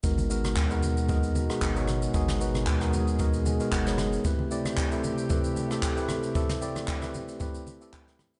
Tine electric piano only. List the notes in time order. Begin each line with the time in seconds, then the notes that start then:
0.03 G#3 B3 D#4 F#4 A#4
0.30 G#3 B3 D#4 F#4 A#4
0.70 G#3 B3 D#4 F#4 A#4
1.09 G#3 B3 D#4 F#4 A#4
1.49 G#3 B3 D#4 F#4 G#4
1.76 G#3 B3 D#4 F#4 C#5
2.14 G#3 B3 D#4 F#4 G#4
2.40 G#3 B3 D#4 F#4 B4
2.81 G#3 B3 D#4 F#4 A#4
3.19 G#3 B3 D#4 F#4 A#4
3.46 G#5
3.60 G#3 B3 D#4 F#4 A#4
3.73 F#5
3.86 G#3 B3 D#4 F#4 C#5
3.99 D#5
4.24 A3 C4 E4 G4 B4
4.51 A3 C4 E4 G4 D5
4.92 A3 C4 E4 G4 A4
5.30 A3 C4 E4 G4 B4
5.71 A3 C4 E4 G4 A4
5.97 A3 C4 E4 G4 B4
6.35 A3 C4 E4 G4 A4
6.61 A3 C4 E4 G4 D5
7.02 A3 C4 E4 G4 B4
7.40 A3 C4 E4 G4 B4
7.81 A3 C4 E4 G4 A4
7.94 G5 B5
8.08 E5 G5
8.34 C5 E5